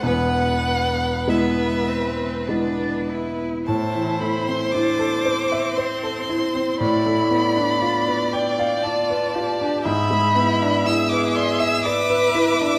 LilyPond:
<<
  \new Staff \with { instrumentName = "Violin" } { \time 3/4 \key a \minor \tempo 4 = 59 fis''4 e''4 r4 | a''8 b''16 c'''16 d'''4 c'''4 | b''4. g''8 a''4 | b''4 e'''16 d'''16 c'''16 e'''16 d'''4 | }
  \new Staff \with { instrumentName = "Violin" } { \time 3/4 \key a \minor b'2. | c''2. | d''2. | e''2. | }
  \new Staff \with { instrumentName = "Cello" } { \time 3/4 \key a \minor b4 b8 c'8 d'8 e'8 | e'4 d'8 c'4. | e'4 d'4 f'8 g'8 | gis'8 e'8 gis'4 b'4 | }
  \new Staff \with { instrumentName = "Grand piano" } { \time 3/4 \key a \minor <e,, e,>4 <gis b e'>4 <gis b e'>4 | a,16 e16 a16 c'16 e'16 a'16 c''16 e''16 c''16 a'16 e'16 c'16 | a,16 a16 b16 d'16 f'16 b'16 d''16 f''16 d''16 b'16 f'16 d'16 | gis,16 gis16 b16 d'16 e'16 b'16 d''16 e''16 d''16 b'16 e'16 d'16 | }
>>